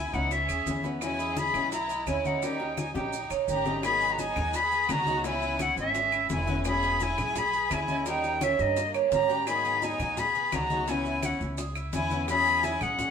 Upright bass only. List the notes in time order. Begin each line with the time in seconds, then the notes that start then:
0.13 C#2
0.49 D#2
0.66 E2
1.54 B1
2.07 D#2
2.95 A#1
3.30 A#1
3.48 G#1
4.36 D#2
4.89 C#2
5.77 G#1
6.30 E1
7.18 B1
7.70 D#2
8.59 G2
9.12 G#2
9.99 B2
10.52 C#2
11.40 C#2
11.93 E2
12.81 B1